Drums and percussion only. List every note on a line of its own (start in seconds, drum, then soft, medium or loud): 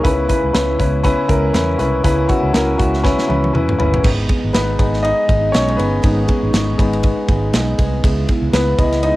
0.05 kick loud
0.05 closed hi-hat medium
0.29 kick medium
0.29 closed hi-hat medium
0.55 snare loud
0.55 closed hi-hat medium
0.80 kick medium
0.80 closed hi-hat medium
1.04 kick medium
1.04 closed hi-hat medium
1.29 kick medium
1.29 closed hi-hat medium
1.54 snare loud
1.54 closed hi-hat medium
1.79 closed hi-hat medium
2.04 kick loud
2.04 closed hi-hat medium
2.29 kick medium
2.29 closed hi-hat medium
2.54 snare loud
2.54 closed hi-hat medium
2.79 kick medium
2.79 closed hi-hat medium
2.94 snare soft
3.04 kick medium
3.04 snare medium
3.18 snare medium
3.30 high tom medium
3.44 high tom medium
3.55 mid tom medium
3.69 mid tom medium
3.80 floor tom medium
3.94 floor tom medium
4.04 kick loud
4.04 crash loud
4.29 kick medium
4.29 ride medium
4.54 snare loud
4.54 ride medium
4.79 kick medium
4.79 ride medium
4.94 snare soft
5.04 ride medium
5.29 kick medium
5.29 ride medium
5.54 snare loud
5.54 ride medium
5.68 ride soft
5.79 ride medium
6.04 kick loud
6.04 ride medium
6.28 kick medium
6.28 ride medium
6.54 snare loud
6.54 ride medium
6.79 kick medium
6.79 ride medium
6.93 ride soft
7.03 kick medium
7.03 ride medium
7.29 kick loud
7.29 ride medium
7.53 snare loud
7.53 ride medium
7.79 kick medium
7.79 ride medium
8.04 kick loud
8.04 ride medium
8.29 kick medium
8.29 ride medium
8.53 snare loud
8.53 ride medium
8.79 kick medium
8.79 ride medium
8.92 snare soft
8.92 ride soft
9.03 ride medium